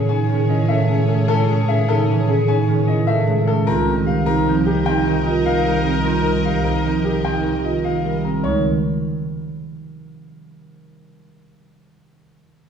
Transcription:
Already playing: A2 C#3 D#3 E3 G#3 G#4 C#5
0.09 C#4 D#4 G#5
0.29 D#3 C#4 G#4
0.49 C#4 E4 D#5
0.68 A3 C#4 A4 E5
0.88 G#3 C#4 G#4
1.09 C#4 A4
1.28 C#4 E4 A4
1.48 D#3 C#4
1.68 C#4 G#4 E5
1.88 C#3 C#4 D#4 A4
2.08 E3 C#4
2.28 C#4 G#4
2.48 C#4 D#4 G#5
2.68 D#3 C#4 G#4
2.88 C#4 E4 D#5
3.07 A3 C#4 A4 E5
3.27 G#3 C#4 G#4
3.47 C#4 A4
3.66 C2 C4 D#4 F4 A#4 D#5
3.86 D#3 C4 D#4
4.06 D#4 G4 F5
4.26 C3 D#4 A#4
4.45 F3 C4 D#4
4.65 D#4 G4
4.85 C4 D#4 G5
5.05 D#3 D#4 G4
5.25 D#4 F4 D#5
5.45 A#3 D#4 A#4 F5
5.65 G3 D#4 G4
5.85 C4 D#4 A#4
6.05 C4 D#4 F4 A#4
6.25 D#3 C4 D#4
6.45 D#4 G4 F5
6.64 C3 D#4 A#4
6.84 F3 C4 D#4
7.04 D#4 G4
7.24 C4 D#4 G5
7.44 D#3 D#4 G4
7.64 D#4 F4 D#5
7.84 A#3 D#4 A#4 F5
8.03 G3 D#4 G4
8.24 C4 A#4
8.44 C#2 D#3 D#4 C#5

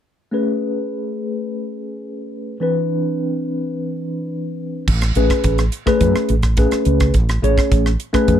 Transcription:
0.31 A3 C#4 G#4 B4
2.60 E3 C4 D4 B4
4.88 A1, kick, crash
5.01 cross-stick, closed hi-hat
5.15 A1 A3 C#4 G#4 B4, closed hi-hat
5.30 kick, cross-stick, closed hi-hat
5.44 A1, kick, closed hi-hat
5.58 cross-stick, closed hi-hat
5.72 closed hi-hat
5.86 A3 C#4 G#4 B4, muted fretless electric bass stroke, kick, cross-stick
6.01 F#2, kick, closed hi-hat
6.16 muted fretless electric bass stroke, cross-stick
6.29 A1, closed hi-hat
6.42 kick, cross-stick, closed hi-hat
6.57 A3 C#4 G#4 B4, kick, closed hi-hat
6.71 muted fretless electric bass stroke, cross-stick, closed hi-hat
6.85 C#2, closed hi-hat
7.00 kick, cross-stick, closed hi-hat
7.14 A1, kick, closed hi-hat
7.29 cross-stick, closed hi-hat
7.42 A1 A3 C#4 G#4 C#5, closed hi-hat
7.58 kick, cross-stick, closed hi-hat
7.71 A1, kick, closed hi-hat
7.86 cross-stick
8.00 closed hi-hat
8.13 A3 C#4 G#4 B4, muted fretless electric bass stroke, kick, cross-stick, closed hi-hat
8.28 F#2, kick, closed hi-hat

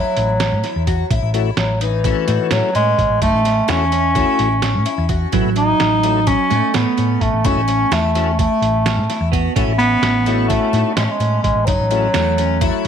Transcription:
Already playing: F#3 E4
0.17 A1, closed hi-hat
0.40 C#4, snare, closed hi-hat
0.52 A2
0.64 E4, snare, closed hi-hat
0.76 E2
0.87 F#4, kick, closed hi-hat
1.10 A1 E4, kick, closed hi-hat
1.22 A1
1.34 A3 E4 F#4 C#5, closed hi-hat
1.57 A1 F#3, snare, closed hi-hat
1.81 E3 D#4, closed hi-hat
2.04 A3 C#4 E4 F#4 C#5, kick, closed hi-hat
2.28 A2 D#4, closed hi-hat
2.51 A2 F#3 C#4, snare, closed hi-hat
2.75 A2 G#3 C#4, closed hi-hat
2.98 A1, kick, closed hi-hat
3.10 A1
3.22 F#1 A3 D#4, kick, closed hi-hat
3.33 A1
3.45 C#4, snare, closed hi-hat
3.68 E2 A3 C#4 E4 F#4 C#5, snare, closed hi-hat
3.92 C#4, closed hi-hat
4.15 A3 E4 F#4 C#5, kick, snare, closed hi-hat
4.39 A1, snare, closed hi-hat
4.62 C#4, snare, closed hi-hat
4.75 A2
4.86 E4, closed hi-hat
4.98 E2
5.09 F#4, kick, closed hi-hat
5.32 A1 F#3 A3 E4 F#4 B4, kick, closed hi-hat
5.45 A1
5.56 E3 D#4, closed hi-hat
5.80 A1, snare, closed hi-hat
6.03 A3 D#4 E4 F#4 C#5, closed hi-hat
6.27 C#4, kick, closed hi-hat
6.50 A2 A3 D#4, closed hi-hat
6.74 A2 B3 C#4, snare, closed hi-hat
6.97 A2 C#4, closed hi-hat
7.21 A1 A3, kick, closed hi-hat
7.33 A1
7.44 F#1 A3 C#4 D#4 E4 F#4 C#5, kick, closed hi-hat
7.57 A1
7.68 C#4, closed hi-hat
7.91 E2 A3 E4, snare, closed hi-hat
8.15 A3 C#4 E4 F#4 C#5, snare, closed hi-hat
8.39 A3 E4, kick, closed hi-hat
8.62 A1, closed hi-hat
8.86 C#4, snare, closed hi-hat
8.97 A2
9.10 E4, snare, closed hi-hat
9.21 E2
9.32 B3 F#4, kick, closed hi-hat
9.56 A1 A3 C#4 E4 F#4 C#5, kick, closed hi-hat
9.67 A1
9.79 B3, snare, closed hi-hat
10.02 A1, snare, closed hi-hat
10.26 A3 D#4 E4 F#4 C#5, snare, closed hi-hat
10.49 A3 C#4, kick, closed hi-hat
10.73 A2 D#4, closed hi-hat
10.96 A2 G#3 C#4, snare, closed hi-hat
11.04 A3
11.10 G#3
11.20 A2 C#4, closed hi-hat
11.43 A1 G#3, kick, closed hi-hat
11.55 A1
11.66 F#1 F#3 D#4, kick, closed hi-hat
11.80 A1
11.91 A3 C#4 E4 F#4 C#5, closed hi-hat
12.14 E2 A3 E4, snare, closed hi-hat
12.38 C#4, closed hi-hat
12.61 A3 E4 F#4 C#5, kick, closed hi-hat

